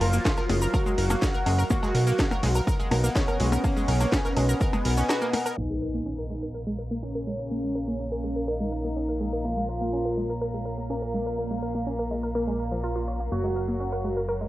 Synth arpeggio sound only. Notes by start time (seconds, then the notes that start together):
0.01 A#4 A#5
0.13 A#3 A#4
0.25 C#4 C#5
0.38 A#4 A#5
0.49 G#3 G#4
0.62 A#4 A#5
0.74 A#4 A#5
0.86 G#3 G#4
0.98 A#4 A#5
1.10 A#3 A#4
1.22 C#4 C#5
1.34 A#4 A#5
1.46 G#3 G#4
1.59 A#4 A#5
1.70 A#3 A#4
1.83 G#3 G#4
1.95 A#4 A#5
2.07 A#3 A#4
2.19 C#4 C#5
2.31 A#4 A#5
2.43 G#3 G#4
2.55 A#4 A#5
2.67 A#4 A#5
2.80 G#3 G#4
2.91 A#4 A#5
3.04 A#3 A#4
3.16 C#4 C#5
3.28 A#4 A#5
3.40 G#3 G#4
3.52 A#4 A#5
3.64 A#3 A#4
3.76 G#3 G#4
3.88 A#4 A#5
4.01 A#3 A#4
4.12 C#4 C#5
4.25 A#4 A#5
4.37 G#3 G#4
4.49 A#4 A#5
4.61 A#4 A#5
4.73 G#3 G#4
4.85 A#4 A#5
4.97 C#4 C#5
5.09 F#4 F#5
5.22 A#3 A#4
5.33 A#4 A#5
5.46 A#4 A#5
5.58 A#3
5.70 G#3
5.82 A#4
5.94 A#3
6.06 C#4
6.18 A#4
6.30 G#3
6.43 A#4
6.54 A#4
6.67 G#3
6.79 A#4
6.91 A#3
7.03 C#4
7.15 A#4
7.27 G#3
7.39 A#4
7.51 A#3
7.63 G#3
7.75 A#4
7.88 A#3
8.00 C#4
8.12 A#4
8.24 G#3
8.36 A#4
8.48 A#4
8.60 G#3
8.72 A#4
8.84 A#3
8.96 C#4
9.09 A#4
9.20 G#3
9.33 A#4
9.45 A#3
9.57 G#3
9.69 A#4
9.81 A#3
9.93 C#4
10.05 A#4
10.17 G#3
10.30 A#4
10.41 A#4
10.54 G#3
10.66 A#4
10.78 A#3
10.90 C#4
11.02 A#4
11.14 G#3
11.26 A#4
11.38 A#3
11.51 G#3
11.62 A#4
11.75 A#3
11.87 C#4
11.99 A#4
12.11 G#3
12.23 A#4
12.35 A#4
12.47 G#3
12.59 A#4
12.72 F3
12.83 F4
12.96 F4
13.08 C#5
13.20 A#3
13.32 A#3
13.44 G#3
13.56 A#4
13.68 A#3
13.80 C#4
13.92 A#4
14.04 G#3
14.17 A#4
14.29 A#4
14.41 G#3